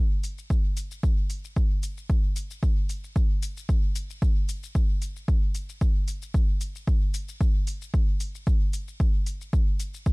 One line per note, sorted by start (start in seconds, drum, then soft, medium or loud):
0.24 open hi-hat medium
0.24 shaker medium
0.38 shaker soft
0.50 kick loud
0.50 shaker soft
0.77 open hi-hat medium
0.77 shaker medium
0.91 shaker soft
1.03 kick loud
1.03 shaker soft
1.30 open hi-hat medium
1.30 shaker medium
1.44 shaker soft
1.56 kick loud
1.56 shaker soft
1.83 open hi-hat medium
1.83 shaker medium
1.98 shaker soft
2.09 kick loud
2.09 shaker soft
2.36 open hi-hat medium
2.36 shaker medium
2.51 shaker soft
2.63 kick loud
2.63 shaker soft
2.89 open hi-hat medium
2.89 shaker medium
3.04 shaker soft
3.16 kick loud
3.16 shaker soft
3.42 open hi-hat medium
3.42 shaker medium
3.57 shaker soft
3.69 kick loud
3.69 shaker soft
3.95 open hi-hat medium
3.95 shaker medium
4.10 shaker soft
4.22 kick loud
4.22 shaker soft
4.49 open hi-hat medium
4.49 shaker medium
4.63 shaker soft
4.75 kick loud
4.75 shaker soft
5.02 open hi-hat medium
5.02 shaker medium
5.16 shaker soft
5.28 kick loud
5.28 shaker soft
5.55 open hi-hat medium
5.55 shaker medium
5.69 shaker soft
5.81 kick loud
5.81 shaker soft
6.08 open hi-hat medium
6.08 shaker medium
6.22 shaker soft
6.34 kick loud
6.34 shaker soft
6.61 open hi-hat medium
6.61 shaker medium
6.75 shaker soft
6.87 kick loud
6.87 shaker soft
7.14 open hi-hat medium
7.14 shaker medium
7.29 shaker soft
7.41 kick loud
7.41 shaker soft
7.67 open hi-hat medium
7.67 shaker medium
7.82 shaker soft
7.94 kick loud
7.94 shaker soft
8.20 open hi-hat medium
8.20 shaker medium
8.35 shaker soft
8.47 kick loud
8.47 shaker soft
8.73 open hi-hat medium
8.73 shaker medium
8.88 shaker soft
9.00 kick loud
9.00 shaker soft
9.26 open hi-hat medium
9.26 shaker medium
9.41 shaker soft
9.53 kick loud
9.53 shaker soft
9.80 open hi-hat medium
9.80 shaker medium
9.94 shaker soft
10.06 kick loud
10.06 shaker soft